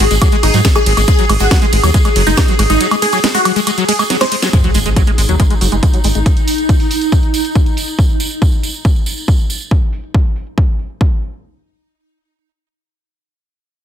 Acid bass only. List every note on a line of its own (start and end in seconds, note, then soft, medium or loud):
0.00 0.04 G#3 loud
0.11 0.15 G#3 medium
0.22 0.28 F#3 medium
0.32 0.36 G#3 loud
0.43 0.47 G#3 medium
0.54 0.61 F#3 medium
0.65 0.69 G#3 loud
0.76 0.80 G#3 medium
0.86 0.93 F#3 medium
0.97 1.01 G#3 loud
1.08 1.12 G#3 medium
1.19 1.25 F#3 medium
1.30 1.34 G#3 loud
1.40 1.44 G#3 medium
1.51 1.58 F#3 medium
1.62 1.66 G#3 loud
1.73 1.77 G#3 medium
1.83 1.90 F#3 medium
1.94 1.98 G#3 loud
2.05 2.09 G#3 medium
2.16 2.22 F#3 medium
2.27 2.31 G#3 loud
2.37 2.41 G#3 medium
2.48 2.55 F#3 medium
2.59 2.63 G#3 loud
2.70 2.74 G#3 medium
2.81 2.87 F#3 medium
2.91 2.95 G#3 loud
3.02 3.06 G#3 medium
3.13 3.20 F#3 medium
3.24 3.28 G#3 loud
3.35 3.39 G#3 medium
3.45 3.52 F#3 medium
3.56 3.60 G#3 loud
3.67 3.71 G#3 medium
3.78 3.84 F#3 medium
3.89 3.93 G#3 loud
3.99 4.03 G#3 medium
4.10 4.17 F#3 medium
4.21 4.25 G#3 loud
4.32 4.36 G#3 medium
4.42 4.49 F#3 medium
4.53 4.57 G#3 medium
4.64 4.71 F#3 medium
4.75 4.79 G#3 loud
4.86 4.90 G#3 medium
4.96 5.03 F#3 medium
5.07 5.11 G#3 loud
5.18 5.22 G#3 medium
5.29 5.35 F#3 medium
5.40 5.44 G#3 loud
5.50 5.54 G#3 medium
5.61 5.68 F#3 medium
5.72 5.76 G#3 loud
5.83 5.87 G#3 medium
5.94 6.00 F#3 medium
6.04 6.08 G#3 loud
6.15 6.19 G#3 medium